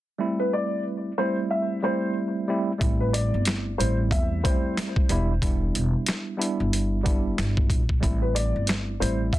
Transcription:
0.18 tine electric piano G3 A3 C4 E4
0.40 upright piano B4
0.53 upright piano D5
1.18 tine electric piano G3 A3 C4 E4, upright piano C5
1.51 upright piano E5
1.82 tine electric piano G3 A3 C4 E4, upright piano C5
2.48 tine electric piano G3 A3 C4 E4
2.78 upright bass A1, tine electric piano G3 A3 C4 E4, kick, closed hi-hat
3.00 upright piano B4
3.13 upright piano D5, closed hi-hat
3.34 upright bass G1
3.45 snare, closed hi-hat
3.78 upright bass A1, tine electric piano G3 A3 C4 E4, upright piano C5, closed hi-hat
4.11 upright bass E2, upright piano E5, kick, closed hi-hat
4.43 tine electric piano G3 A3 C4 E4, upright piano C5, kick, closed hi-hat
4.77 snare, closed hi-hat
4.96 kick
5.09 upright bass E1, tine electric piano G3 B3 D4 E4, closed hi-hat
5.42 tine electric piano G3 B3 D4 E4, kick, closed hi-hat
5.75 upright bass E1, closed hi-hat
6.06 snare, closed hi-hat
6.37 tine electric piano G3 B3 D4 E4
6.42 closed hi-hat
6.60 upright bass G1
6.73 closed hi-hat
7.03 tine electric piano G3 B3 D4 E4, kick, closed hi-hat
7.38 upright bass G1, snare, closed hi-hat
7.57 kick
7.70 upright bass A#1, kick, closed hi-hat
7.89 kick
8.00 upright bass A1, tine electric piano G3 A3 C4 E4, kick, closed hi-hat
8.22 upright piano B4
8.35 upright piano D5, closed hi-hat
8.56 upright bass G1
8.67 snare, closed hi-hat
9.00 upright bass A1, tine electric piano G3 A3 C4 E4, upright piano C5, closed hi-hat
9.33 upright bass E2, upright piano E5, kick, closed hi-hat

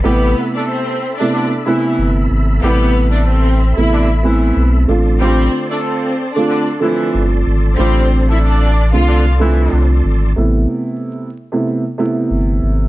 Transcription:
0.04 sub bass A1, upright piano C3 A3 B3 E4, horn section G3 G4, violin section B3 B4, tonewheel organ A4 E5 B5
0.55 horn section A3 A4, violin section D4 D5
0.69 violin section C4 C5
1.18 upright piano C3 A3 B3 E4, violin section D4 D5
1.33 horn section D3 D4
1.66 upright piano C3 A3 B3 E4, horn section E3 E4
1.98 sub bass G1
2.31 sub bass G#1
2.62 sub bass A1, upright piano C3 A3 B3 E4, horn section G3 G4, violin section B3 B4
3.11 horn section A3 A4, violin section D4 D5
3.28 violin section C4 C5
3.77 sub bass A1, upright piano C3 A3 B3 E4, violin section E4 E5
3.92 horn section D3 D4
4.23 horn section E3 E4, upright piano A3 B3 C4 E4
4.56 sub bass B1
4.88 sub bass A1, upright piano D3 A3 C4 F4, tonewheel organ D5 A5 C6
5.20 upright piano D3 A3 C4 F4, horn section G3 G4, violin section C4 C5
5.70 horn section A3 A4, violin section D4 D5
5.84 violin section C4 C5
6.33 upright piano D3 A3 C4 F4, violin section D4 D5
6.48 horn section D3 D4
6.80 upright piano D3 F3 A3 C4, horn section E3 E4
7.14 sub bass G1
7.47 sub bass G#1
7.77 sub bass A1, upright piano D3 A3 C4 F4, horn section G3 G4, violin section C4 C5
8.28 horn section A3 A4, violin section E4 E5
8.43 violin section D4 D5
8.93 sub bass C2, upright piano D3 A3 C4 F4, violin section F4 F5
9.08 horn section D3 D4
9.39 upright piano D3 F3 A3 C4, horn section E3 E4
9.72 sub bass C2
10.05 sub bass G#1
10.36 sub bass A1, upright piano C3 A3 B3 E4
11.52 upright piano C3 A3 B3 E4
11.98 upright piano C3 A3 B3 E4
12.30 sub bass G1
12.63 sub bass G#1

